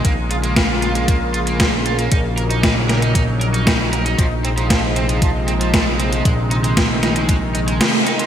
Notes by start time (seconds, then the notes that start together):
Already playing: G#3
0.04 A#1 C#3 A#3 F4, kick, closed hi-hat
0.31 F4, closed hi-hat
0.44 A#3, closed hi-hat
0.56 A#3, kick, snare, closed hi-hat
0.82 F4, closed hi-hat
0.95 A#3, closed hi-hat
1.08 A#3, kick, closed hi-hat
1.34 F4, closed hi-hat
1.47 A#3, closed hi-hat
1.60 A#3, kick, snare, closed hi-hat
1.86 F4, closed hi-hat
1.99 A#3, closed hi-hat
2.12 A#1 F#3 D#4, kick, closed hi-hat
2.38 A#4, closed hi-hat
2.51 D#4, closed hi-hat
2.63 D#4, kick, snare, closed hi-hat
2.89 A#4, snare, closed hi-hat
3.02 D#4, closed hi-hat
3.15 D#4, kick, closed hi-hat
3.41 A#4, closed hi-hat
3.54 D#4, closed hi-hat
3.67 D#4, kick, snare, closed hi-hat
3.93 A#4, closed hi-hat
4.06 D#4, closed hi-hat
4.18 A#1 C3 F3 G#3, kick, closed hi-hat
4.44 C4, closed hi-hat
4.57 F3, closed hi-hat
4.70 F3, kick, snare, closed hi-hat
4.96 C4, closed hi-hat
5.09 F3, closed hi-hat
5.22 F3, kick, closed hi-hat
5.48 C4, closed hi-hat
5.61 F3, closed hi-hat
5.74 F3, kick, snare, closed hi-hat
6.00 C4, closed hi-hat
6.13 F3, closed hi-hat
6.25 A#1 D#3 G#3, kick, closed hi-hat
6.51 D#4, closed hi-hat
6.64 G#3, closed hi-hat
6.77 G#3, kick, snare, closed hi-hat
7.03 D#4, snare, closed hi-hat
7.16 G#3, closed hi-hat
7.29 G#3, kick, closed hi-hat
7.55 D#4, closed hi-hat
7.68 G#3, closed hi-hat
7.81 G#3, snare, closed hi-hat
8.06 D#4, closed hi-hat
8.19 G#3, closed hi-hat